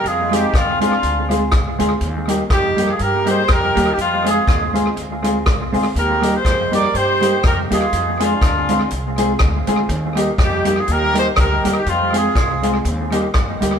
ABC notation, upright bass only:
X:1
M:4/4
L:1/8
Q:"Swing" 1/4=122
K:Eb
V:1 name="Upright bass" clef=bass
F,,2 E,,2 D,,2 C,, D,, | E,,2 F,,2 G,,2 F,, E,, | F,,2 E,,2 D,,2 C,, D,, | E,,2 F,,2 G,,2 F,, E,, |
F,,2 D,,2 C,,2 D,, D,, | E,,2 F,,2 E,,2 D,, E,, | F,,2 C,,2 E,,2 F,, D,, |]